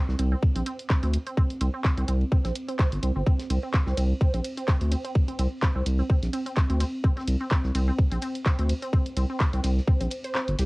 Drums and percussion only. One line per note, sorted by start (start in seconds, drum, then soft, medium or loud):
0.09 snare medium
0.19 closed hi-hat loud
0.19 ride medium
0.43 kick loud
0.43 ride medium
0.56 closed hi-hat soft
0.66 closed hi-hat loud
0.66 ride medium
0.79 closed hi-hat soft
0.79 ride soft
0.90 kick loud
0.90 snare loud
0.90 clap medium
0.90 ride medium
1.03 closed hi-hat soft
1.13 closed hi-hat loud
1.13 ride medium
1.27 closed hi-hat soft
1.37 kick loud
1.37 ride medium
1.50 closed hi-hat soft
1.50 ride soft
1.61 closed hi-hat medium
1.61 ride medium
1.84 kick loud
1.84 snare loud
1.84 clap medium
1.84 ride medium
1.98 closed hi-hat soft
2.08 closed hi-hat loud
2.08 ride medium
2.21 ride soft
2.32 kick loud
2.32 ride medium
2.44 snare soft
2.44 closed hi-hat soft
2.55 closed hi-hat loud
2.55 ride medium
2.68 closed hi-hat soft
2.79 kick loud
2.79 snare loud
2.79 clap medium
2.79 ride medium
2.92 closed hi-hat soft
3.02 closed hi-hat loud
3.02 ride medium
3.26 kick loud
3.26 ride medium
3.39 snare medium
3.39 closed hi-hat soft
3.50 closed hi-hat medium
3.50 ride medium
3.62 ride soft
3.73 kick loud
3.73 snare loud
3.73 clap medium
3.73 ride medium
3.86 snare medium
3.97 closed hi-hat medium
3.97 ride medium
4.21 kick loud
4.21 ride medium
4.34 closed hi-hat soft
4.44 closed hi-hat medium
4.44 ride medium
4.57 closed hi-hat soft
4.57 ride soft
4.68 kick loud
4.68 snare loud
4.68 clap medium
4.68 ride loud
4.81 closed hi-hat soft
4.92 closed hi-hat medium
4.92 ride medium
5.05 closed hi-hat soft
5.15 kick loud
5.15 ride medium
5.28 closed hi-hat soft
5.28 ride soft
5.39 closed hi-hat medium
5.39 ride medium
5.62 kick loud
5.62 snare loud
5.62 clap medium
5.62 ride medium
5.86 closed hi-hat loud
5.86 ride medium
5.99 ride soft
6.09 kick loud
6.09 ride medium
6.23 snare soft
6.23 closed hi-hat soft
6.33 closed hi-hat medium
6.33 ride medium
6.46 closed hi-hat soft
6.56 kick loud
6.56 snare loud
6.56 clap medium
6.56 ride medium
6.70 closed hi-hat soft
6.80 snare loud
6.80 closed hi-hat medium
6.80 ride medium
7.04 kick loud
7.04 ride medium
7.17 snare medium
7.17 closed hi-hat soft
7.28 closed hi-hat medium
7.28 ride medium
7.41 ride soft
7.50 kick loud
7.50 snare loud
7.50 clap medium
7.50 ride medium
7.64 snare medium
7.75 closed hi-hat medium
7.75 ride medium
7.99 kick loud
7.99 ride medium
8.12 closed hi-hat soft
8.22 closed hi-hat medium
8.22 ride medium
8.35 closed hi-hat soft
8.35 ride soft
8.46 kick loud
8.46 snare loud
8.46 clap medium
8.46 ride medium
8.59 closed hi-hat soft
8.70 closed hi-hat medium
8.70 ride medium
8.83 closed hi-hat soft
8.93 kick loud
8.93 ride medium
9.06 closed hi-hat soft
9.06 ride soft
9.17 closed hi-hat medium
9.17 ride medium
9.40 kick loud
9.40 snare loud
9.40 clap loud
9.40 ride loud
9.53 closed hi-hat soft
9.64 snare loud
9.64 closed hi-hat medium
9.64 ride medium
9.78 snare medium
9.87 kick loud
9.87 ride medium
10.01 closed hi-hat soft
10.10 closed hi-hat medium
10.10 ride medium
10.24 closed hi-hat soft
10.35 snare loud
10.35 clap medium
10.35 ride medium
10.48 closed hi-hat soft
10.59 snare loud
10.59 closed hi-hat medium
10.59 ride medium